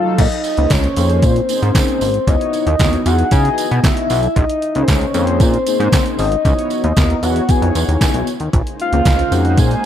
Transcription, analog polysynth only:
Already playing: F#3 D#4 F4 A4
0.57 A#3 C#4 D#4 G#4 C5
0.97 A#3 C#4 D#4 G#4 C5
1.49 A#3 C#4 D#4 G#4 C5
2.27 B3 D#4 E4 F#4 C#5
2.80 B3 D#4 E4 F#4 C#5
3.05 B3 D#4 E4 F#4 G#4
3.32 B3 D#4 E4 F#4 D#5
4.75 A#3 C#4 D#4 G#4 C5
5.14 A#3 C#4 D#4 G#4 C5
5.67 A#3 C#4 D#4 G#4 C5
6.45 B3 D#4 E4 F#4 C#5
6.97 B3 D#4 E4 F#4 A#4
7.23 B3 D#4 E4 F#4 C#5
7.49 B3 D#4 E4 F#4 B4
7.56 C#5
8.92 A#3 C#4 D#4 G#4 C5
9.31 A#3 C#4 D#4 G#4 C5

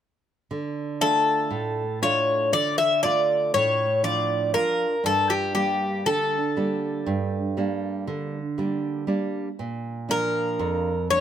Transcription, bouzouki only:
1.01 A4
2.03 C#5
2.53 D5
2.78 E5
3.03 D5
3.54 C#5
4.04 D5
4.54 A#4
5.06 A4
5.30 G4
5.55 G4
6.06 A4
10.11 A#4
11.11 C#5

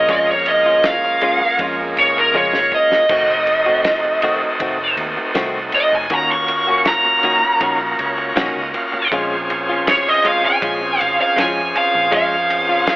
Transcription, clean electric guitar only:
0.09 G#3 C#4 F4
0.47 muted clean electric guitar stroke
0.66 C#4 F4
0.85 muted clean electric guitar stroke
1.05 muted clean electric guitar stroke
1.22 G#3 C#4 F4
1.42 muted clean electric guitar stroke
1.60 G#3 C#4 F4
1.79 muted clean electric guitar stroke
2.16 muted clean electric guitar stroke
2.35 G#3 C#4 F4
2.72 muted clean electric guitar stroke
2.91 muted clean electric guitar stroke
3.10 D#3 A3 C4 F#4
3.48 muted clean electric guitar stroke
3.66 A3 C4 F#4
3.85 muted clean electric guitar stroke
4.05 muted clean electric guitar stroke
4.23 D#3 A3 C4 F#4
4.42 muted clean electric guitar stroke
4.60 D#3 A3 C4 F#4
4.79 muted clean electric guitar stroke
5.17 muted clean electric guitar stroke
5.35 D#3 A3 C4 F#4
5.73 muted clean electric guitar stroke
5.92 muted clean electric guitar stroke
6.10 D#3 A#3 C#4 F#4
6.49 muted clean electric guitar stroke
6.67 A#3 C#4 F#4
6.86 muted clean electric guitar stroke
7.05 muted clean electric guitar stroke
7.23 D#3 A#3 C#4 F#4
7.43 muted clean electric guitar stroke
7.61 D#3 A#3 C#4 F#4
7.80 muted clean electric guitar stroke
8.18 muted clean electric guitar stroke
8.36 D#3 A#3 C#4 F#4
8.74 muted clean electric guitar stroke
8.93 muted clean electric guitar stroke
9.12 G#3 C#4 F4
9.50 muted clean electric guitar stroke
9.69 C#4 F4
10.07 muted clean electric guitar stroke
10.24 G#3 C#4 F4
10.44 muted clean electric guitar stroke
10.62 G#3 C#4 F4
10.81 muted clean electric guitar stroke
11.19 muted clean electric guitar stroke
11.36 G#3 C#4 F4
11.75 muted clean electric guitar stroke
11.94 muted clean electric guitar stroke
12.12 G#3 C#4 F4
12.50 muted clean electric guitar stroke
12.69 C#4 F4

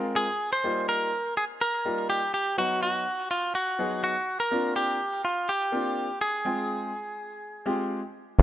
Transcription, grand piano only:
Already playing: G#3 C4 F4 A#4
0.64 G3 A#3 D#4 F4
1.85 G3 A#3 D#4 F4
2.58 F#3 B3 D#4 F#4
3.79 F#3 B3 D#4 G#4
4.51 A#3 C4 D4 F4
5.72 A#3 C4 D4 F4
6.45 G#3 C4 F4 G5
7.66 G#3 C4 F4 G4
8.39 F#3 A#3 C#4 F4

